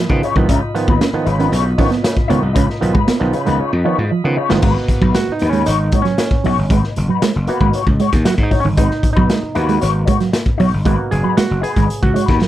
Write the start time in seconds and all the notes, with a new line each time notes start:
Already playing: F4 D#5 B5
0.09 C#3 D#3 F3 B3, muted clean electric guitar stroke, kick
0.23 C#3 D#4 F4 C#5, closed hi-hat
0.36 C2 D#3 F3 B3, muted clean electric guitar stroke, kick
0.49 C#2 C#3 C#4 D#4 F4 B4, kick, closed hi-hat
0.63 muted clean electric guitar stroke
0.75 D#3 F3 B3, muted clean electric guitar stroke, closed hi-hat
0.88 D#2 F3 B3 D#4 F4 B4, kick
1.01 C#4, muted clean electric guitar stroke, snare, closed hi-hat
1.13 D#3 F3 B3, muted slap bass stroke, muted clean electric guitar stroke
1.25 G#1 C#3 D#4 F4 B4, closed hi-hat
1.39 D#3 F3 B3 C#4 D#4 F4 B4, closed hi-hat
1.52 B1 C#3 D#4 F4 C#5, muted clean electric guitar stroke, closed hi-hat
1.66 muted clean electric guitar stroke
1.78 D#3 F3 B3 C#4 D#4 F4 C#5, kick, open hi-hat
1.91 F3 B3, muted clean electric guitar stroke, snare, closed hi-hat
2.03 C#3, muted clean electric guitar stroke, snare, closed hi-hat
2.16 muted clean electric guitar stroke, kick
2.28 C#2 D#3 F3 B3 D#4 F4 C#5, closed hi-hat
2.41 C2 F3 B3, muted clean electric guitar stroke
2.53 C#2 C#3 C#4 D#4 F4 B4, kick, closed hi-hat
2.67 muted clean electric guitar stroke, snare
2.80 B1 D#3 F3 B3, muted clean electric guitar stroke, closed hi-hat
2.93 F3 G#3 B3 D#4 F4 B4, kick
3.06 B3, muted clean electric guitar stroke, muted slap bass stroke, snare, closed hi-hat
3.19 B1 D#3 F3 B3, muted clean electric guitar stroke
3.33 C#3 D#4 F4 B4, closed hi-hat
3.46 C#2 D#3 F3 G#3 B3 D#4 F4 B4, closed hi-hat
3.59 C#3 D#4 F4 C#5, muted slap bass stroke
3.71 F2, muted clean electric guitar stroke
3.84 D#3 F3 B3 D#4 F4 C#5
3.98 G#2 F3 B3, muted clean electric guitar stroke
4.11 F3, muted clean electric guitar stroke
4.24 C#3 D#3 F3 B3, muted clean electric guitar stroke
4.37 C#3 D#4 F4 C#5
4.49 G1 D#3 F3 G#3 B3, muted clean electric guitar stroke, snare
4.62 G#1 G#3 A#3 B3 D#4 F#4 B4, kick, crash
4.75 muted clean electric guitar stroke, snare
4.88 muted clean electric guitar stroke, kick, closed hi-hat
5.01 B1 F#3 D#4 F#4 B4, kick
5.14 G#3 F#4, muted clean electric guitar stroke, snare, closed hi-hat
5.28 muted clean electric guitar stroke, muted slap bass stroke
5.32 D#4
5.39 D#2 D#4 F#4 B4, closed hi-hat
5.49 G#3 C#4, closed hi-hat
5.55 D#4 F#4 B4
5.66 G#1 D#4 F#4 C#5, muted clean electric guitar stroke, closed hi-hat
5.80 muted clean electric guitar stroke
5.92 G#3 D#4 F#4 C#5, kick, closed hi-hat
6.02 F#3 C#4, snare, closed hi-hat
6.18 muted clean electric guitar stroke, snare, closed hi-hat
6.31 muted clean electric guitar stroke, kick
6.44 B1 F#3 D#4 F#4 C#5, open hi-hat
6.58 G1, muted clean electric guitar stroke
6.70 G#1 G#3 D#4 F#4 B4, kick, closed hi-hat
6.84 muted clean electric guitar stroke, snare
6.96 F#1, muted clean electric guitar stroke, closed hi-hat
7.09 F#3 D#4 F#4 B4
7.22 G#3, muted slap bass stroke, muted clean electric guitar stroke, snare, closed hi-hat
7.36 F#1, muted clean electric guitar stroke
7.47 A#3 B3 D#4 F#4 B4, closed hi-hat
7.61 G#1 G#3 D#4 F#4 B4, kick
7.73 D#4 F#4 C#5, closed hi-hat
7.87 C#2, muted clean electric guitar stroke, kick
8.00 G#3 D#4 F#4 C#5, closed hi-hat
8.12 D#2, muted clean electric guitar stroke, kick, snare, closed hi-hat
8.25 F#3 F#4, muted clean electric guitar stroke, snare, closed hi-hat
8.38 G#2, muted clean electric guitar stroke, kick
8.43 D#4
8.51 D#4 F#4 C#5, kick, open hi-hat
8.60 C#4
8.65 G1 D#3, muted clean electric guitar stroke
8.77 G#1 G#3 D#4 F#4 B4, kick, closed hi-hat
8.91 muted clean electric guitar stroke, snare
9.03 muted clean electric guitar stroke, kick, closed hi-hat
9.13 B1 D#4 F#4 B4, kick
9.17 F#3 D#4
9.29 G#3, muted clean electric guitar stroke, snare, closed hi-hat
9.43 muted slap bass stroke, muted clean electric guitar stroke
9.55 D#2 A#3 B3 D#4 F#4 B4, closed hi-hat
9.67 G#3 D#4 F#4 B4, closed hi-hat
9.80 G#1 D#4 F#4 C#5, muted clean electric guitar stroke, closed hi-hat
9.93 muted clean electric guitar stroke
10.05 G#3 D#4 F#4 C#5, kick, closed hi-hat
10.18 F#3, muted clean electric guitar stroke, snare, closed hi-hat
10.32 muted clean electric guitar stroke, snare, closed hi-hat
10.45 muted clean electric guitar stroke, kick
10.58 B1 F#3 D#4 F#4 C#5, open hi-hat
10.71 G1, muted clean electric guitar stroke
10.85 G#1 G#3 A#3 B3 D#4 F#4 B4, kick, closed hi-hat
10.98 muted clean electric guitar stroke
11.11 F#1 G#4, muted clean electric guitar stroke, closed hi-hat
11.23 F#3 D#4 F#4 B4
11.36 G#3 F#4, muted clean electric guitar stroke, muted slap bass stroke, snare, closed hi-hat
11.50 F#1, muted clean electric guitar stroke
11.61 D#4 F#4 G#4 B4, closed hi-hat
11.75 G#1 G#3 D#4 F#4 B4, kick, closed hi-hat
11.88 muted clean electric guitar stroke, muted slap bass stroke, closed hi-hat
12.02 C#2 F#4, muted clean electric guitar stroke, kick
12.14 G#3 D#4 F#4 C#5, closed hi-hat
12.26 D#2 D#4 F#4 B4, kick, snare
12.39 F#3, muted clean electric guitar stroke, snare